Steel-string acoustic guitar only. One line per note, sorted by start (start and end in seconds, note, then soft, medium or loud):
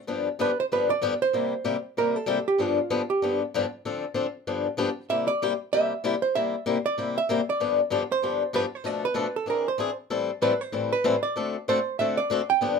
0.07 0.27 G2 medium
0.07 0.28 D3 medium
0.07 0.28 F3 medium
0.07 0.28 B3 medium
0.07 0.28 D4 medium
0.07 0.28 G4 medium
0.39 0.50 G2 medium
0.39 0.50 D3 medium
0.39 0.50 F3 medium
0.39 0.50 B3 medium
0.39 0.50 D4 medium
0.39 0.51 G4 medium
0.72 0.91 G2 medium
0.72 0.91 D3 medium
0.72 0.91 F3 medium
0.72 0.91 B3 medium
0.72 0.91 D4 medium
0.72 0.91 G4 medium
1.02 1.12 G2 medium
1.02 1.13 D3 medium
1.02 1.13 F3 medium
1.02 1.13 B3 medium
1.02 1.13 D4 loud
1.02 1.13 G4 loud
1.33 1.53 C3 medium
1.33 1.53 G3 medium
1.33 1.53 A#3 medium
1.33 1.53 E4 medium
1.33 1.53 G4 medium
1.64 1.75 C3 medium
1.64 1.75 G3 medium
1.64 1.75 A#3 medium
1.64 1.76 E4 medium
1.64 1.76 G4 medium
1.97 2.16 C3 medium
1.97 2.16 G3 medium
1.97 2.16 A#3 medium
1.97 2.17 E4 medium
1.97 2.17 G4 medium
2.26 2.38 C3 medium
2.26 2.37 G3 medium
2.26 2.38 A#3 medium
2.26 2.38 E4 medium
2.26 2.38 G4 loud
2.58 2.78 G2 medium
2.58 2.78 D3 medium
2.58 2.78 F3 medium
2.58 2.79 B3 medium
2.58 2.79 D4 medium
2.58 2.79 G4 medium
2.90 3.01 G2 medium
2.90 3.01 D3 medium
2.90 3.01 F3 medium
2.90 3.01 B3 medium
2.90 3.01 D4 medium
2.90 3.01 G4 medium
3.22 3.41 G2 medium
3.22 3.41 D3 medium
3.22 3.42 F3 medium
3.22 3.42 B3 medium
3.22 3.42 D4 medium
3.22 3.42 G4 medium
3.54 3.64 G2 medium
3.54 3.65 D3 medium
3.54 3.65 F3 medium
3.54 3.65 B3 medium
3.54 3.65 D4 loud
3.54 3.64 G4 medium
3.85 4.04 D3 medium
3.85 4.04 F3 medium
3.85 4.04 C4 medium
3.85 4.04 D4 medium
3.85 4.05 A4 medium
4.14 4.25 D3 medium
4.14 4.25 F3 medium
4.14 4.25 C4 medium
4.14 4.26 D4 medium
4.14 4.26 A4 medium
4.47 4.66 G2 medium
4.47 4.66 D3 medium
4.47 4.66 F3 medium
4.47 4.66 B3 medium
4.47 4.67 D4 medium
4.47 4.67 G4 medium
4.77 4.88 G2 medium
4.77 4.88 D3 medium
4.77 4.88 F3 medium
4.77 4.89 B3 loud
4.77 4.89 D4 loud
4.77 4.89 G4 loud
5.09 5.29 C3 medium
5.09 5.29 G3 medium
5.09 5.29 A#3 medium
5.09 5.29 E4 medium
5.09 5.29 G4 medium
5.42 5.52 C3 medium
5.42 5.52 G3 medium
5.42 5.52 A#3 medium
5.42 5.52 E4 medium
5.42 5.52 G4 loud
5.73 5.92 C3 medium
5.73 5.92 G3 medium
5.73 5.92 A#3 medium
5.73 5.92 E4 medium
5.73 5.92 G4 medium
6.04 6.14 C3 medium
6.04 6.14 G3 medium
6.04 6.14 A#3 medium
6.04 6.14 E4 loud
6.04 6.15 G4 medium
6.35 6.54 C3 medium
6.35 6.55 G3 medium
6.35 6.54 A#3 medium
6.35 6.55 E4 medium
6.35 6.55 G4 medium
6.66 6.76 C3 medium
6.66 6.76 G3 medium
6.66 6.77 A#3 medium
6.66 6.77 E4 medium
6.66 6.77 G4 medium
6.98 7.17 C3 medium
6.98 7.17 G3 medium
6.98 7.17 A#3 medium
6.98 7.17 E4 medium
6.98 7.17 G4 medium
7.29 7.39 C3 medium
7.29 7.40 G3 medium
7.29 7.40 A#3 loud
7.29 7.40 E4 medium
7.29 7.40 G4 medium
7.60 7.79 G2 medium
7.60 7.79 D3 medium
7.60 7.80 F3 medium
7.60 7.80 B3 medium
7.60 7.80 D4 medium
7.60 7.80 G4 medium
7.90 8.01 G2 medium
7.90 8.02 D3 medium
7.90 8.02 F3 medium
7.90 8.02 B3 medium
7.90 8.02 D4 medium
7.90 8.02 G4 medium
8.22 8.42 G2 medium
8.22 8.42 D3 medium
8.22 8.42 F3 medium
8.22 8.42 B3 medium
8.22 8.42 D4 medium
8.22 8.42 G4 medium
8.53 8.64 G2 medium
8.53 8.64 D3 medium
8.53 8.64 F3 medium
8.53 8.64 B3 medium
8.53 8.65 D4 medium
8.53 8.64 G4 loud
8.84 9.04 B2 medium
8.84 9.04 F3 medium
8.84 9.04 A3 medium
8.84 9.04 D4 medium
8.84 9.04 A4 medium
9.14 9.26 B2 medium
9.14 9.26 F3 medium
9.14 9.26 A3 medium
9.14 9.26 D4 medium
9.14 9.26 A4 medium
9.46 9.66 E3 medium
9.46 9.67 C4 medium
9.46 9.67 D4 medium
9.46 9.67 G#4 medium
9.78 9.89 E3 medium
9.78 9.89 C4 medium
9.78 9.89 D4 medium
9.78 9.90 G#4 medium
10.10 10.30 A2 medium
10.10 10.30 E3 medium
10.10 10.30 G3 medium
10.10 10.30 C4 medium
10.10 10.30 E4 medium
10.10 10.30 A4 medium
10.42 10.52 A2 medium
10.42 10.52 E3 medium
10.42 10.52 G3 medium
10.42 10.53 C4 medium
10.42 10.53 E4 medium
10.42 10.53 A4 medium
10.72 10.92 A2 medium
10.72 10.92 E3 medium
10.72 10.92 G3 medium
10.72 10.92 C4 medium
10.72 10.92 E4 medium
10.72 10.92 A4 medium
11.04 11.15 A2 medium
11.04 11.15 E3 loud
11.04 11.15 G3 medium
11.04 11.15 C4 loud
11.04 11.15 E4 medium
11.04 11.15 A4 loud
11.36 11.55 D3 medium
11.36 11.55 A3 medium
11.36 11.55 C4 medium
11.36 11.56 F#4 medium
11.36 11.56 A4 medium
11.68 11.78 D3 medium
11.68 11.78 A3 medium
11.68 11.78 C4 medium
11.68 11.78 F#4 medium
11.68 11.78 A4 medium
11.99 12.18 D3 medium
11.99 12.19 A3 medium
11.99 12.18 C4 medium
11.99 12.19 F#4 medium
11.99 12.19 A4 medium
12.30 12.40 D3 medium
12.30 12.41 A3 medium
12.30 12.41 C4 medium
12.30 12.41 F#4 loud
12.30 12.41 A4 loud
12.61 12.79 G2 medium
12.61 12.79 D3 medium
12.61 12.79 F3 medium
12.61 12.79 B3 medium
12.61 12.79 D4 medium
12.61 12.79 G4 medium